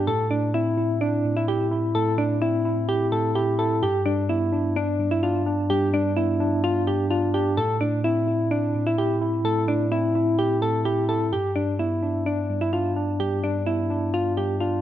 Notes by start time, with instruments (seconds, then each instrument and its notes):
0.07 tine electric piano A2, synth keys A4
0.31 tine electric piano A2, synth keys D4
0.54 tine electric piano C4, synth keys E4
0.78 tine electric piano E4
1.01 synth keys D4
1.25 tine electric piano A2
1.37 synth keys E4
1.48 tine electric piano E4, synth keys G4
1.71 tine electric piano E4
1.95 tine electric piano A2, synth keys A4
2.18 tine electric piano A2, synth keys D4
2.42 tine electric piano C4, synth keys E4
2.65 tine electric piano E4
2.89 synth keys G4
3.12 tine electric piano A2, synth keys A4
3.35 tine electric piano E4, synth keys G4
3.59 tine electric piano E4, synth keys A4
3.82 tine electric piano G2, synth keys G4
4.06 tine electric piano G2, synth keys D4
4.29 tine electric piano B3, synth keys E4
4.53 tine electric piano D4
4.76 synth keys D4
5.00 tine electric piano G2
5.11 synth keys E4
5.23 tine electric piano D4, synth keys F4
5.46 tine electric piano D4
5.70 tine electric piano G2, synth keys G4
5.93 tine electric piano G2, synth keys D4
6.17 tine electric piano B3, synth keys E4
6.40 tine electric piano D4
6.64 synth keys F4
6.87 tine electric piano G2, synth keys G4
7.11 tine electric piano D4, synth keys F4
7.34 tine electric piano D4, synth keys G4
7.57 tine electric piano A2, synth keys A4
7.81 tine electric piano A2, synth keys D4
8.04 tine electric piano C4, synth keys E4
8.28 tine electric piano E4
8.51 synth keys D4
8.75 tine electric piano A2
8.87 synth keys E4
8.98 tine electric piano E4, synth keys G4
9.21 tine electric piano E4
9.45 tine electric piano A2, synth keys A4
9.68 tine electric piano A2, synth keys D4
9.92 tine electric piano C4, synth keys E4
10.15 tine electric piano E4
10.39 synth keys G4
10.62 tine electric piano A2, synth keys A4
10.85 tine electric piano E4, synth keys G4
11.09 tine electric piano E4, synth keys A4
11.32 tine electric piano G2, synth keys G4
11.56 tine electric piano G2, synth keys D4
11.79 tine electric piano B3, synth keys E4
12.03 tine electric piano D4
12.26 synth keys D4
12.50 tine electric piano G2
12.61 synth keys E4
12.73 tine electric piano D4, synth keys F4
12.96 tine electric piano D4
13.20 tine electric piano G2, synth keys G4
13.43 tine electric piano G2, synth keys D4
13.66 tine electric piano B3, synth keys E4
13.90 tine electric piano D4
14.14 synth keys F4
14.37 tine electric piano G2, synth keys G4
14.60 tine electric piano D4, synth keys F4